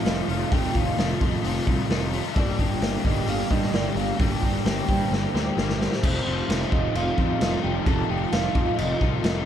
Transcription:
Already playing: F2 C3 D#3 A3 D#4 F4 D#5 F5 A5
0.05 F1 D#3 A3 D#4 F4, snare, open hi-hat
0.28 F1 D#3 A3 D#4 F4 F5, open hi-hat
0.51 F1 F2 C3 D#3 A3 D#4 F4 G5, kick, open hi-hat
0.75 F1 D#3 A3 D#4 F4 F5, kick, open hi-hat
0.97 F1 D#3 A3 D#4 F4, snare, open hi-hat
1.20 F2 D#3 A3 D#4 F4, kick, open hi-hat
1.43 F1 F2 C3 D#3 A3 D#4 F4, open hi-hat
1.66 C2 D#3 A3 D#4 F4, kick, open hi-hat
1.89 F1 D#3 A3 D#4 F4, snare, open hi-hat
2.12 D#3 A3 D#4 F4, open hi-hat
2.35 G1 G2 D3 G3 A#3 D4 G4 D5 A#5, kick, open hi-hat
2.58 G1 G3 A#3 D4 G4, kick, open hi-hat
2.81 G1 G3 A#3 D4 G4, snare, open hi-hat
3.04 G1 G3 A#3 D4 G4 D#5, kick, open hi-hat
3.27 G1 G2 D3 G3 A#3 D4 G4 F5, open hi-hat
3.50 G2 G3 A#3 D4 G4 D#5, kick, open hi-hat
3.63 snare
3.72 G1 G3 A#3 D4 D5, snare, open hi-hat
3.76 G4
3.95 G1 D4 G4 F5, open hi-hat
3.99 G3 A#3
4.19 G1 G2 D3 G3 A#3 D4 G4 C5 G5, kick, open hi-hat
4.43 G1 G3 A#3 D4 G4, kick, open hi-hat
4.65 G1 G3 A#3 D4 G4, snare, open hi-hat
4.88 G2 G3 A#3 D4 G4, kick, open hi-hat
5.10 G1 G2 D3 G3 A#3 D4, snare
5.14 G4
5.34 D2 G3 A#3 D4 G4, snare
5.57 G1 G3 A#3 D4 G4, snare
5.70 snare
5.79 G3 A#3 D4 G4, snare
5.92 snare
6.02 F1 F2 C3 D#3 F3 A3 C4 D#4 F4 A4 C5 D#5 A5, kick, crash
6.26 F1 D#3 A3 D#4 F4
6.49 F1 D#3 A3 D#4 F4, snare, crash
6.62 snare
6.71 F1 D#3 A3 D#4 F4 D#5, kick
6.94 F1 F2 C3 D#3 A3 D#4 F4 F5, crash
7.17 F2 D#3 A3 D#4 F4, kick
7.41 F1 D#3 A3 D#4 F4, snare, crash
7.62 F1 D#3 A3 D#4 F4 G5
7.85 F1 F2 C3 D#3 A3 D#4 F4 A5, kick, crash
8.08 F1 D#3 A3 D#4 F4 G5
8.32 F1 D#3 A3 D#4 F4 F5, snare, crash
8.54 F2 D#3 A3 D#4 F4, kick
8.77 F1 F2 C3 D#3 A3 D#4 F4 D#5, crash
9.00 C2 D#3 A3 D#4 F4, kick
9.23 F1 D#3 A3 D#4 F4, snare, crash

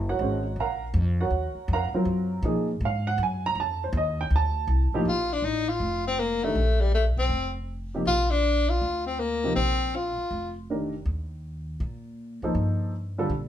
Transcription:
Already playing: F#1
0.09 F#4 A#4 C#5 F#5
0.19 G#1 G#3 C#4 F#4 C5
0.56 A#1
0.60 A#4 F5 F#5 A#5
0.94 F2
1.21 F#4 A#4 C#5 F#5
1.31 D#2
1.55 muted upright bass stroke
1.68 F2
1.73 A#4 F5 F#5 A#5
1.93 F#3 C4 F4 A#4, muted upright bass stroke
2.05 F#2
2.42 A#2 F3 A#3 D#4 G#4
2.81 G#2
2.85 F5
3.07 F#5
3.18 F#2
3.23 G#5
3.46 A#5
3.55 F2
3.60 A5
3.84 C5
3.93 D#2
3.97 D#5
4.21 G5
4.30 D2
4.36 A5
4.67 C2
4.93 A2 F3 A#3 D#4 G4, muted upright bass stroke
5.05 A#1 F4
5.33 D4
5.42 A1 D#4
5.69 F4
5.80 F1
6.07 C4
6.19 A#3
6.44 D#3 A3 D4 G4 A#4
6.55 A#1
6.81 G3
6.94 A3
7.17 B1 C4
7.29 F1
7.94 C3 F3 A#3 D#4 G4
8.05 A#1 F4
8.31 D4
8.70 F4
8.81 D2
9.06 C4
9.20 A#3
9.44 C3 F3 A#3 D#4 G4
9.56 A#1 C4
9.95 F4
10.18 muted upright bass stroke
10.31 F1
10.70 D#3 A3 D4 G4 A#4
11.05 D#2
11.80 A#2
12.42 D2 F3 A#3 D#4 A4 C5
12.55 G2
13.18 D3 G3 C4 F4 A4
13.30 A#2

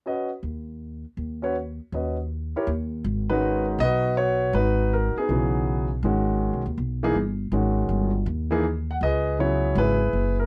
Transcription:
0.06 C#4 F#4 B4 D#5
0.43 D#2
1.17 D#2
1.42 C#4 F#4 B4 C#5
1.92 D#2 C#4 F#4 B4 D#5
2.56 E4 G4 A#4 C#5
2.67 D#2
3.04 G#1
3.30 D#3 G#3 C#4 D#4 F#4 B4
3.78 B1 F#4 D#5
3.83 B4
4.17 F#4 C#5
4.53 G#1 D#4 F#4 B4
4.93 A#4
5.16 B3 D#4 G#4, muted upright bass stroke
5.29 B1 C#3 E3 F#3 B3
6.03 G#1 D#3 G#3 C#4 F#4
6.53 B1
6.66 D#2
6.78 B1
7.03 E3 A#3 D#4 G#4
7.14 G1
7.52 G#1 D#3 G#3 C#4 F#4
7.89 G1
8.26 D#2
8.51 E3 A#3 D#4 G#4
8.91 F#5
9.01 C#2 G#4 B4 D#5
9.39 C#3 F#3 B3 E4 G#4 C#5
9.75 G#1 E4 G#4 B4
10.13 F#1
10.40 A#4

